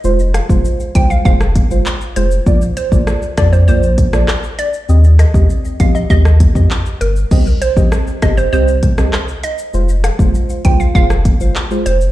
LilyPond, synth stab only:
\new Staff \with { instrumentName = "Synth stab" } { \time 4/4 \key c \minor \tempo 4 = 99 <aes f' c''>16 r8 <aes f' c''>8. <aes f' c''>8 <aes f' c''>16 r8 <aes f' c''>16 r8 <aes f' c''>16 r16 | <bes f' d''>16 r8 <bes f' d''>8. <bes f' d''>8 <bes f' d''>16 r8 <bes f' d''>16 r4 | <c' g' ees''>16 r8 <c' g' ees''>8. <c' g' ees''>8 <c' g' ees''>16 r8 <c' g' ees''>16 r4 | <c' g' ees''>16 r8 <c' g' ees''>8. <c' g' ees''>8 <c' g' ees''>16 r8 <c' g' ees''>16 r4 |
<aes f' c''>16 r8 <aes f' c''>8. <aes f' c''>8 <aes f' c''>16 r8 <aes f' c''>16 r16 <aes f' c''>16 r8 | }